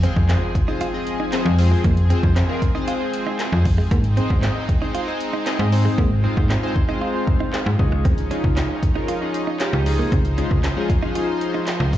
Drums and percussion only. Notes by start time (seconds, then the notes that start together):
0.03 closed hi-hat
0.16 kick
0.29 snare, clap, closed hi-hat
0.55 kick, closed hi-hat
0.81 closed hi-hat
1.07 closed hi-hat
1.32 snare, clap, closed hi-hat
1.59 open hi-hat
1.84 kick, closed hi-hat
1.97 closed hi-hat
2.10 closed hi-hat
2.23 kick
2.36 snare, clap, closed hi-hat
2.62 kick, closed hi-hat
2.88 closed hi-hat
3.14 closed hi-hat
3.39 snare, clap, closed hi-hat
3.65 kick, open hi-hat
3.91 kick, closed hi-hat
4.04 closed hi-hat
4.17 closed hi-hat
4.30 kick
4.43 snare, clap, closed hi-hat
4.69 kick, closed hi-hat
4.95 closed hi-hat
5.20 closed hi-hat
5.46 snare, clap, closed hi-hat
5.72 open hi-hat
5.98 kick
6.37 kick
6.50 snare, clap
6.76 kick
7.27 kick
7.53 snare, clap
7.79 kick
8.05 kick, closed hi-hat
8.18 closed hi-hat
8.31 closed hi-hat
8.44 kick
8.57 snare, clap, closed hi-hat
8.83 kick, closed hi-hat
9.08 closed hi-hat
9.34 closed hi-hat
9.60 snare, clap, closed hi-hat
9.86 open hi-hat
10.12 kick, closed hi-hat
10.25 closed hi-hat
10.38 closed hi-hat
10.51 kick
10.64 snare, clap, closed hi-hat
10.90 kick, closed hi-hat
11.15 closed hi-hat
11.41 closed hi-hat
11.67 snare, clap, closed hi-hat
11.93 kick, open hi-hat